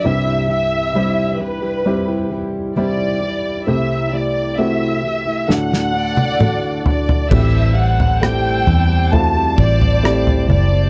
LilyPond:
<<
  \new Staff \with { instrumentName = "Tonewheel organ" } { \time 4/4 \key a \dorian \tempo 4 = 66 << { r1 | r1 | e'''2 d'''2 | } \\ { r1 | r1 | <g c'' a''>1 | } >> }
  \new Staff \with { instrumentName = "Violin section" } { \time 4/4 \key a \dorian e''8 e''4 b'4 r8 d''4 | e''8 d''8 e''4 fis''8 d''4 d''8 | e''8 fis''8 g''4 a''8 d''4 d''8 | }
  \new Staff \with { instrumentName = "Grand piano" } { \time 4/4 \key a \dorian <g c' e' g'>4 <g c' e' g'>4 <g c' e' g'>4 <g c' e' g'>4 | <a c' e' g'>4 <a c' e' fis'>4 <a d' fis' a'>4 <a d' fis' a'>4 | <a c' e' fis' g'>4 <a c' e' g'>4 <a c' e' f' fis'>4 <a c' e' g'>4 | }
  \new Staff \with { instrumentName = "Grand piano" } { \clef bass \time 4/4 \key a \dorian <c, g,>1 | <c, c>2 <d, a,>2 | <a, e>4. r2 r8 | }
  \new Staff \with { instrumentName = "Steel-string acoustic guitar" } { \time 4/4 \key a \dorian <c e g e' g'>8 <e g e' g'>8 <c e g e' g'>8 <e g e' g'>16 <g e' g'>16 <e g e' g'>16 <g e' g'>16 <e g e' g'>8 <c e g e' g'>8 <e g e' g'>8 | <c e a e' g'>8 <e a e' g'>8 <c e a e' g'>8 <e a e' g'>16 <a e' g'>16 <d a d'>16 <a d' fis'>16 <d a d' fis'>8 <d a d' fis'>8 <d a d' fis'>8 | <a, e g c' g'>8 <e g g'>8 <a, e g c' g'>8 <e g c' g'>16 <g c' g'>8 <g c' g'>8 <g c' g'>16 <a, e g c' g'>8 <e g c' g'>16 <g c' g'>16 | }
  \new Staff \with { instrumentName = "Fingered electric bass" } { \clef bass \time 4/4 \key a \dorian r1 | r1 | a,,4. e,4 a,,4 fis,,8 | }
  \new DrumStaff \with { instrumentName = "Drums" } \drummode { \time 4/4 r4 r4 r4 r4 | r4 r4 sn16 sn8 tommh16 toml8 tomfh16 tomfh16 | <cymc bd tomfh>8. tomfh16 ss8 tomfh8 tomfh8 bd16 tomfh16 ss16 tomfh16 tomfh8 | }
>>